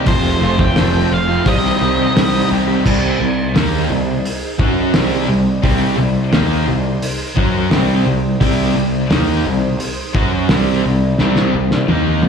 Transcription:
0.06 F1 F2 C3 F3 A3 C4 F4 A4 C5, kick, open hi-hat
0.40 F1 F3 A3 C4 F4
0.58 A3 C4 F4 G5, kick, snare
0.76 F1 F3 A3 C4 F4, snare, open hi-hat
0.93 A3 C4 F4
1.11 F1 F3 A3 C4 F4 F5, muted distorted electric guitar stroke
1.28 A3 C4 F4
1.45 C2 C3 D#3 G3 C4 D#4 G4 C5 D#5, kick, open hi-hat
1.63 G3 C4 G4
1.79 C2 D#3 G3 C4 G4
1.97 G3 C4 G4
2.14 C2 C3 D#3 G3 C4 G4, snare, open hi-hat
2.31 G3 C4 G4
2.50 C2 D#3 G3 C4 G4
2.67 G3 C4 G4
2.85 C2 C3 G3 C4 D#4, kick, crash
2.89 C5
3.20 C2 C3 G3
3.54 D#2 D#3 A#3 D#4, snare, open hi-hat
3.89 C2 C3 G3
4.25 open hi-hat
4.59 F#2 F#3 C#4 F#4, kick
4.93 C2 C3 G3 C4, snare, open hi-hat
5.28 C2 C3 G3
5.63 C2 C3 G3 C4 D#4 C5, kick, open hi-hat
5.98 C2 C3 G3
6.33 D#2 D#3 A#3 D#4, snare, open hi-hat
6.68 C2 C3 G3
7.02 open hi-hat
7.36 F#2 F#3 C#4 F#4, kick
7.71 C2 C3 G3 C4, snare, open hi-hat
8.06 C2 C3 G3
8.41 C2 C3 G3 C4 D#4 C5, kick, open hi-hat
8.75 C2 C3 G3
9.10 D#2 D#3 A#3 D#4, snare, open hi-hat
9.45 C2 C3 G3
9.80 open hi-hat
10.14 F#2 F#3 C#4 F#4, kick
10.48 C2 C3 G3 C4, snare, open hi-hat
10.84 C2 C3 G3
11.18 C2 C3 G3 C4 D#4 G4, snare
11.36 snare
11.54 C2 C3 G3
11.71 snare
11.88 D#2 D#3 A#3 D#4, high tom
12.23 C2 C3 G3, high tom

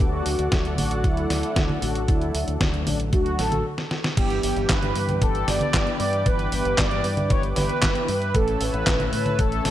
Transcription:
Already playing: D6
0.00 D2 F#3 A3 D4 F#4 A4 D5 F#5, kick, closed hi-hat
0.26 D2, open hi-hat
0.39 D2, closed hi-hat
0.52 D2, kick, snare, closed hi-hat
0.65 closed hi-hat
0.78 A1 F#4, open hi-hat, high conga
0.91 closed hi-hat
1.04 D2 E4, kick, closed hi-hat
1.17 closed hi-hat
1.30 D2, snare, open hi-hat
1.43 closed hi-hat
1.56 D2, kick, snare, closed hi-hat
1.69 high conga
1.82 A1 F#3 A3 D4 F#4 A4, open hi-hat
1.95 closed hi-hat
2.08 D2 F#3 A3 D4 E4 A4, kick, closed hi-hat
2.21 closed hi-hat
2.34 D2, open hi-hat
2.48 D2, closed hi-hat
2.61 D2, kick, snare, closed hi-hat
2.74 closed hi-hat
2.87 A1 D4, open hi-hat, high conga
3.00 closed hi-hat
3.13 D2 F#4, kick, closed hi-hat, high conga
3.26 closed hi-hat
3.39 A1 A4, snare, open hi-hat
3.52 closed hi-hat, high conga
3.78 snare
3.91 snare
4.04 snare
4.17 G1 E3 B3 D4 G4 B4 E5 G5 D6, kick, closed hi-hat, crash
4.30 closed hi-hat
4.43 G1 G4, open hi-hat
4.56 G1, closed hi-hat
4.69 G1 B4, kick, snare, clap, closed hi-hat
4.83 closed hi-hat, high conga
4.96 G2, open hi-hat
5.09 closed hi-hat, high conga
5.22 G1 A4, kick, closed hi-hat
5.35 closed hi-hat
5.48 G1 D5, snare, open hi-hat
5.61 closed hi-hat, high conga
5.74 G1, kick, snare, clap, closed hi-hat
5.87 closed hi-hat
6.00 G2 E3 B3 D4 G4 D5, open hi-hat
6.13 closed hi-hat
6.26 G1 E3 B3 D4 G4 B4, kick, closed hi-hat
6.39 closed hi-hat
6.52 G1 B4, open hi-hat
6.65 G1, closed hi-hat
6.78 G1 D5, kick, snare, clap, closed hi-hat
6.91 closed hi-hat
7.04 G2, open hi-hat
7.17 closed hi-hat, high conga
7.30 G1 C#5, kick, closed hi-hat
7.43 closed hi-hat
7.56 G1 B4, snare, open hi-hat, high conga
7.69 closed hi-hat
7.82 G1, kick, snare, clap, closed hi-hat
7.95 closed hi-hat
8.08 G2 B4, open hi-hat
8.22 closed hi-hat
8.35 A1 E3 A3 C#4 A4 C#5 A5 E6, kick, closed hi-hat
8.48 closed hi-hat
8.61 A1 B4, open hi-hat
8.74 A1
8.87 A1, kick, snare, clap, closed hi-hat
9.00 closed hi-hat, high conga
9.13 A2 B4, open hi-hat
9.26 closed hi-hat, high conga
9.39 A1 A4, kick, closed hi-hat
9.52 closed hi-hat
9.65 A1 A4, snare, open hi-hat

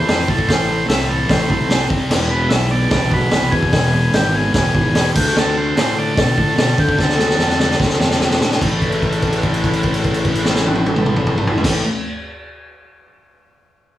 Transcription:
Already playing: E4 A4 C5
0.08 F2 A2 E3 A3, snare, open hi-hat
0.28 A2 E3 A3 A4, kick
0.39 kick
0.48 A1 A2 E3 A3 C5, kick, snare, open hi-hat
0.69 A2 E3 A3
0.88 C2 A2 E3 A3 E5, snare, open hi-hat
1.09 A2 E3 A3 A4
1.29 A1 A2 E3 A3 C5, kick, snare, open hi-hat
1.49 C2 A2 E3 A3, kick
1.70 C2 A2 E3 A3, snare, open hi-hat
1.89 C2 C3 G3 C4, kick
2.09 E1 E2 B2 E3 E4 G#4 B4, snare, crash
2.30 E2 B2 E3 B4
2.49 B1 E2 B2 E3 E5, snare, open hi-hat
2.71 E2 B2 E3 D5
2.91 C2 E2 B2 E3 D5, kick, snare, open hi-hat
3.11 B1 E2 B2 E3 B4, kick
3.31 C2 E2 B2 E3, snare, open hi-hat
3.51 E2 B2 E3 G#4, kick
3.63 kick
3.73 E1 E2 B2 E3 G#4, kick, snare, open hi-hat
3.93 E2 B2 E3
4.13 G#1 E2 B2 E3 G4, snare, open hi-hat
4.34 E2 B2 E3 G#4
4.54 E1 E2 B2 E3 G#4, kick, snare, open hi-hat
4.75 G#1 E2 B2 E3, kick
4.94 E2 B2 E3, snare, open hi-hat
5.13 D2 D3 A3 D4 F4 G4 A4, kick, crash
5.36 D2 D3 A3 D4 A4, snare
5.57 D3 A3 D4 C5
5.76 A2 D3 A3 D4, snare, open hi-hat
5.97 D3 A3 D4 D5
6.17 B2 D3 A3 D4 A4, kick, snare, open hi-hat
6.38 A2 D3 A3 D4, kick
6.58 B2 D3 A3 D4 A4, snare, open hi-hat
6.78 D3 A3 D4 G4, kick
6.89 kick
6.97 D2 D3 A3 D4 A4, kick, snare
7.09 snare
7.18 D3 A3 D4, snare
7.30 snare
7.39 F2 D3 A3 D4, snare
7.49 snare
7.59 D3 A3 D4, snare
7.71 snare
7.79 D2 D3 A3 D4, kick, snare
7.90 snare
8.00 F2 D3 A3 D4, snare
8.11 snare
8.20 F2 D3 A3 D4, snare
8.31 snare
8.41 A2 D3 A3 D4, snare
8.51 snare
8.60 A1 A2 E3 C4 E4 A4, kick, crash
8.65 A3
8.82 kick, crash
8.92 crash
9.02 kick, crash
9.12 crash
9.22 kick, crash
9.33 crash
9.43 kick, crash
9.54 crash
9.64 kick, crash
9.73 crash
9.83 kick, crash
9.94 crash
10.04 kick, crash
10.14 crash
10.25 kick, crash
10.35 crash
10.45 snare
10.55 snare
10.66 high tom
10.75 high tom
10.86 high tom
10.96 mid tom
11.06 mid tom
11.16 mid tom
11.27 mid tom
11.38 mid tom
11.47 floor tom
11.57 floor tom
11.62 A1 A2 E3 A3 C4 E4 A4, kick, snare, crash

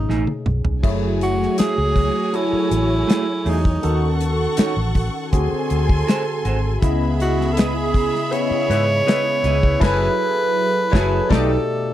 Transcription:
Already playing: B2 A3 C#4 D#4 G#4
0.08 A1 A3 D#4 G#4, snare
0.27 high tom
0.46 B1, mid tom
0.65 B1, floor tom
0.82 F#1 F#3 A3 E4 F#4 G#4 C#5 G#5, kick, crash
1.21 F#4, closed hi-hat
1.42 snare
1.58 A3 E4 G#4, muted fingered electric bass stroke, snare, closed hi-hat
1.78 C#2
1.96 kick, open hi-hat
2.33 F#3 E4 G#4 A4, closed hi-hat
2.53 muted fingered electric bass stroke
2.71 A1, closed hi-hat
3.07 A3 E4 G#4, snare, closed hi-hat
3.45 E2 A3 E4 G#4, open hi-hat
3.49 D#4
3.65 kick
3.82 D#2 D#3 C#4 F#4 A4 F#5 C#6, closed hi-hat
4.20 closed hi-hat
4.57 D#4 F#4 C#5, muted fingered electric bass stroke, snare, closed hi-hat
4.77 A1
4.95 kick, open hi-hat
5.33 D2 D3 C4 F#4 G#4 A4 G#5 C6, kick, closed hi-hat
5.52 muted fingered electric bass stroke
5.70 D2, closed hi-hat
5.89 kick
6.07 F#4 G#4 C5, snare, closed hi-hat
6.45 G#1 F#4 G#4 C5, closed hi-hat
6.81 C#2 C#3 B3 E4 G#4 D#5 E5 B5, kick, closed hi-hat
7.20 F#4, closed hi-hat
7.41 snare
7.53 A4
7.57 E4 G#4 B4 D#5, snare, closed hi-hat
7.94 kick, open hi-hat
8.15 snare
8.32 C#3 B3 E4 C#5 D#5, closed hi-hat
8.51 muted fingered electric bass stroke
8.69 G#2 G#3 B3 E4, closed hi-hat
9.07 G#3 B3 E4 B4 D#5, snare, closed hi-hat
9.44 C#2 E4 B4 D#5, closed hi-hat
9.63 kick
9.80 F#1 F#3 E4 G#4 A4 B4 C#5 G#5, kick, snare, crash
10.91 F#1 F#3 E4 G#4 A4 B4 C#5 G#5, kick, snare
11.29 B1 B2 G3 A3 D#4 G4 A4 B4 D5 A5, kick, snare

